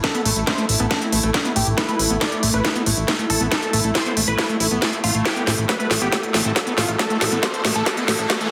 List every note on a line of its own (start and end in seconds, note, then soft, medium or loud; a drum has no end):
0.00 8.51 A3 medium
0.00 5.28 E4 medium
0.00 8.51 E4 medium
0.00 8.51 A4 medium
0.00 0.28 A4 loud
0.00 2.08 A5 medium
0.00 kick loud
0.00 snare medium
0.00 closed hi-hat medium
0.15 0.22 B3 medium
0.15 closed hi-hat soft
0.26 0.33 A1 medium
0.26 0.32 A3 medium
0.26 0.30 A3 medium
0.26 open hi-hat loud
0.36 0.44 A1 medium
0.36 0.43 A3 medium
0.36 closed hi-hat soft
0.47 0.54 A3 medium
0.47 0.65 C5 loud
0.47 kick loud
0.47 snare medium
0.47 closed hi-hat medium
0.58 0.65 A3 medium
0.58 closed hi-hat soft
0.69 0.76 A1 medium
0.69 open hi-hat loud
0.80 0.87 A1 medium
0.80 0.87 B3 medium
0.80 0.98 A4 medium
0.80 closed hi-hat soft
0.91 0.95 A3 medium
0.91 0.98 C4 medium
0.91 kick loud
0.91 snare medium
0.91 closed hi-hat medium
1.02 1.09 C4 medium
1.02 closed hi-hat soft
1.12 1.20 A1 loud
1.12 1.19 A3 medium
1.12 open hi-hat loud
1.23 1.31 A1 medium
1.23 1.30 A3 medium
1.23 closed hi-hat soft
1.34 kick loud
1.34 snare medium
1.34 closed hi-hat medium
1.45 1.52 B3 medium
1.45 closed hi-hat soft
1.56 1.63 A1 medium
1.56 1.60 A3 medium
1.56 1.68 G4 medium
1.56 open hi-hat loud
1.67 1.74 A1 medium
1.67 closed hi-hat soft
1.78 1.85 A3 medium
1.78 2.02 B4 loud
1.78 kick loud
1.78 snare medium
1.78 closed hi-hat medium
1.89 1.95 A3 medium
1.89 closed hi-hat soft
1.99 2.07 A1 loud
1.99 open hi-hat loud
2.06 5.56 E5 medium
2.10 2.18 A1 medium
2.10 2.17 B3 medium
2.10 closed hi-hat soft
2.21 2.25 A3 medium
2.21 2.39 D5 loud
2.21 kick loud
2.21 snare medium
2.21 closed hi-hat medium
2.32 closed hi-hat soft
2.43 2.50 A1 medium
2.43 2.50 A3 medium
2.43 open hi-hat loud
2.54 2.61 A1 medium
2.54 2.61 A3 medium
2.54 2.72 B4 loud
2.54 closed hi-hat soft
2.65 kick loud
2.65 snare medium
2.65 closed hi-hat medium
2.75 2.82 B3 medium
2.75 closed hi-hat soft
2.86 2.94 A1 medium
2.86 2.91 A3 medium
2.86 open hi-hat loud
2.97 3.05 A1 medium
2.97 closed hi-hat soft
3.08 3.15 A3 medium
3.08 kick loud
3.08 snare medium
3.08 closed hi-hat medium
3.19 3.26 A3 medium
3.19 closed hi-hat soft
3.30 3.37 A1 medium
3.30 3.42 A4 medium
3.30 open hi-hat loud
3.41 3.48 A1 medium
3.41 3.48 B3 medium
3.41 closed hi-hat soft
3.52 3.56 A3 medium
3.52 3.75 A4 loud
3.52 kick loud
3.52 snare medium
3.52 closed hi-hat medium
3.62 closed hi-hat soft
3.73 3.81 A1 medium
3.73 3.80 A3 medium
3.73 open hi-hat loud
3.84 3.92 A1 medium
3.84 3.91 A3 medium
3.84 closed hi-hat soft
3.95 4.13 C5 loud
3.95 kick loud
3.95 snare medium
3.95 closed hi-hat medium
4.06 4.13 B3 medium
4.06 closed hi-hat soft
4.17 4.24 A1 medium
4.17 4.21 A3 medium
4.17 open hi-hat loud
4.28 4.35 A1 medium
4.28 4.46 B4 loud
4.28 closed hi-hat soft
4.38 4.45 A3 medium
4.38 kick loud
4.38 snare medium
4.38 closed hi-hat medium
4.49 4.56 A3 medium
4.49 closed hi-hat soft
4.60 4.68 A1 loud
4.60 4.67 E4 medium
4.60 open hi-hat loud
4.71 4.79 A1 medium
4.71 4.81 B3 medium
4.71 closed hi-hat soft
4.82 4.92 A3 loud
4.82 kick loud
4.82 snare medium
4.82 closed hi-hat medium
4.93 closed hi-hat soft
5.04 5.11 A1 medium
5.04 5.11 A3 medium
5.04 5.16 F4 medium
5.04 open hi-hat loud
5.15 5.22 A1 medium
5.15 5.25 A3 medium
5.15 closed hi-hat soft
5.25 5.49 G4 loud
5.25 8.51 A4 medium
5.25 kick loud
5.25 snare medium
5.25 closed hi-hat medium
5.25 riser medium
5.36 5.43 B3 medium
5.36 closed hi-hat soft
5.47 5.55 A1 loud
5.47 5.51 A3 medium
5.47 snare medium
5.47 open hi-hat loud
5.54 8.51 A5 medium
5.58 5.65 A1 medium
5.58 closed hi-hat soft
5.69 5.76 A3 medium
5.69 5.87 B4 medium
5.69 kick loud
5.69 snare medium
5.69 closed hi-hat medium
5.80 5.87 A3 medium
5.80 closed hi-hat soft
5.91 5.98 A1 medium
5.91 snare medium
5.91 open hi-hat loud
6.02 6.09 A1 medium
6.02 6.08 B3 medium
6.02 6.20 G4 loud
6.12 6.17 A3 medium
6.12 kick loud
6.12 snare medium
6.12 closed hi-hat medium
6.23 closed hi-hat soft
6.34 6.42 A1 loud
6.34 6.41 A3 medium
6.34 6.41 C4 medium
6.34 snare medium
6.34 open hi-hat loud
6.45 6.52 A1 medium
6.45 6.52 A3 medium
6.45 6.52 C4 medium
6.45 closed hi-hat soft
6.56 kick loud
6.56 snare medium
6.56 closed hi-hat medium
6.67 6.74 B3 medium
6.67 closed hi-hat soft
6.78 6.85 A1 medium
6.78 6.82 A3 medium
6.78 6.89 A3 medium
6.78 6.90 F4 medium
6.78 snare medium
6.78 open hi-hat loud
6.89 6.96 A1 medium
6.89 closed hi-hat soft
6.99 7.06 A3 medium
6.99 7.23 A4 loud
6.99 kick loud
6.99 snare medium
6.99 closed hi-hat medium
7.10 7.17 A3 medium
7.10 closed hi-hat soft
7.21 7.29 A1 loud
7.21 snare medium
7.21 open hi-hat loud
7.32 7.39 A1 medium
7.32 7.39 B3 medium
7.32 closed hi-hat soft
7.43 7.47 A3 medium
7.43 7.61 C5 loud
7.43 kick loud
7.43 snare medium
7.43 closed hi-hat medium
7.54 closed hi-hat soft
7.65 7.72 A1 medium
7.65 7.72 A3 medium
7.65 snare medium
7.65 open hi-hat loud
7.75 7.83 A1 medium
7.75 7.82 A3 medium
7.75 7.93 A4 loud
7.75 closed hi-hat soft
7.86 kick loud
7.86 snare medium
7.86 closed hi-hat medium
7.97 8.04 B3 medium
7.97 closed hi-hat soft
8.08 8.15 A1 loud
8.08 8.12 A3 medium
8.08 snare medium
8.08 open hi-hat loud
8.19 8.26 A1 medium
8.19 closed hi-hat soft
8.30 8.37 A3 medium
8.30 kick loud
8.30 snare medium
8.30 closed hi-hat medium
8.41 8.51 E3 loud
8.41 8.48 A3 medium
8.41 closed hi-hat soft